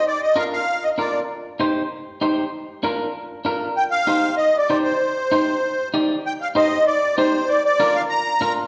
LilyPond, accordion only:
\new Staff \with { instrumentName = "Accordion" } { \time 4/4 \key c \minor \tempo 4 = 194 d''8 ees''8 f''8 f''4 ees''8 d''8. r16 | r1 | r1 | g''8 f''4. \tuplet 3/2 { ees''4 d''8~ } d''8 c''8~ |
c''2. r4 | g''8 f''8 ees''4 d''4 c''4 | d''8 d''4 f''8 bes''4. r8 | }